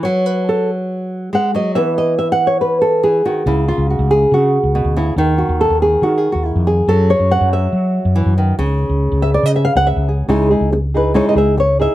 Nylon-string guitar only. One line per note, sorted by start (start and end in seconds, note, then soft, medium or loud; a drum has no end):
0.03 1.32 F#3 medium
0.03 0.26 C#5 medium
0.26 0.47 B4 medium
0.49 0.69 A4 medium
1.33 1.54 G#3 medium
1.33 1.55 F#5 medium
1.55 1.76 F#3 medium
1.55 1.75 D#5 medium
1.75 3.02 E3 medium
1.75 3.25 B3 soft
1.75 2.47 B4 soft
1.75 1.97 E5 medium
1.98 2.18 D#5 medium
2.19 2.32 E5 medium
2.32 2.47 F#5 loud
2.47 2.61 C#5 medium
2.61 2.81 B4 medium
2.82 3.03 A4 medium
3.03 3.25 E3 medium
3.03 3.25 G#4 medium
3.25 3.46 D#3 medium
3.25 3.47 F#4 medium
3.47 4.95 C#3 medium
3.47 3.68 E4 medium
3.68 3.90 F4 medium
3.90 4.11 F#4 medium
4.11 4.32 G#4 loud
4.34 4.97 F#4 medium
4.75 4.96 B2 medium
4.97 5.18 C#3 medium
4.97 5.17 E4 medium
5.18 6.86 D#3 medium
5.18 5.38 D#4 medium
5.38 5.60 F#4 medium
5.61 5.82 A4 medium
5.82 6.03 G#4 medium
6.03 6.17 F#4 medium
6.17 6.31 G#4 loud
6.32 6.46 F#4 medium
6.46 6.67 E4 medium
6.67 6.88 G#4 medium
6.89 8.59 F#3 medium
6.89 7.10 A4 medium
7.10 7.31 C#5 loud
7.31 7.52 F#5 loud
7.53 8.59 E5 medium
8.16 8.37 E3 medium
8.38 8.58 D#3 medium
8.59 10.27 C#3 medium
9.22 9.33 E5 medium
9.34 9.46 D5 medium
9.46 9.55 D#5 medium
9.56 9.66 E5 medium
9.65 9.75 F5 loud
9.77 9.87 F#5 loud
9.87 10.08 E5 medium
10.09 10.27 G#4 soft
10.29 10.49 C#3 medium
10.29 10.50 G#3 medium
10.29 10.50 D#4 medium
10.29 10.50 E4 medium
10.29 10.49 G#4 medium
10.51 10.71 D#4 soft
10.51 10.72 E4 soft
10.51 10.71 G#4 medium
10.72 muted nylon-string guitar stroke medium
10.94 11.15 D#4 soft
10.94 11.14 E4 soft
10.94 11.14 G#4 soft
10.94 11.16 B4 medium
11.14 11.35 C#3 medium
11.14 11.35 G#3 medium
11.14 11.35 D#4 medium
11.14 11.35 E4 medium
11.14 11.35 G#4 medium
11.14 11.25 C#5 medium
11.29 11.37 D#5 medium
11.36 11.57 D#4 soft
11.36 11.56 E4 soft
11.36 11.56 G#4 medium
11.36 11.59 E5 medium
11.57 11.80 C#5 medium
11.57 muted nylon-string guitar stroke medium
11.79 11.95 D#4 soft
11.79 11.95 E4 soft
11.79 11.95 G#4 medium
11.79 11.95 E5 medium